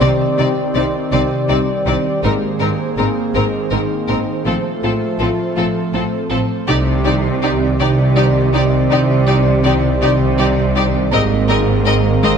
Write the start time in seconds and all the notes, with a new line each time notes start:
Already playing: D#3 C4 G4 D5
0.01 C2 C3 C4 D#4 D5
0.38 C2 C3 C4 D#4 D5
0.75 C2 C3 C4 D#4 D5
1.12 C2 C3 C4 D#4 D5
1.49 C2 C3 G3 C4 D#4 D5
1.86 C2 C3 G3 C4 D#4 D5
2.23 G#1 G#2 D#3 G#3 A#3 C4 D#4 G#4 A#4 C5
2.60 G#1 G#2 C4 D#4 G#4 A#4
2.98 G#1 G#2 C4 D#4 G#4 A#4
3.35 G#1 G#2 G#3 C4 D#4 A#4
3.71 G#1 G#2 C4 D#4 A#4
4.09 G#1 G#2 C4 D#4 A#4
4.45 A1 A2 F3 A3 C4 F4 A4
4.83 A1 A2 C4 F4 A4
5.20 A1 A2 C4 F4 A4
5.57 A1 A2 F3 C4 F4 A4
5.94 A1 A2 C4 F4 A4
6.31 A1 A2 C4 F4 A4
6.68 C2 C3 D#3 C4 D#4 G4 D5
7.05 C4 D#4 G4 D5
7.42 C4 D#4 G4 D5
7.79 C2 C3 D#4 G4 D5
8.16 G3 D#4 G4 D5
8.54 G3 D#4 G4 D5
8.90 C2 C3 D#4 G4 D5
9.27 C4 D#4 G4 D5
9.64 C4 D#4 G4 D5
10.01 C2 C3 D#4 G4 D5
10.38 G3 D#4 G4 D5
10.75 G3 D#4 G4 D5
11.12 G#1 G#2 D#3 G#3 A#3 C4 G#4 A#4 C5 D#5
11.49 C4 G#4 A#4 D#5
11.86 C4 G#4 A#4 D#5
12.23 G#1 G#2 G#3 C4 A#4 D#5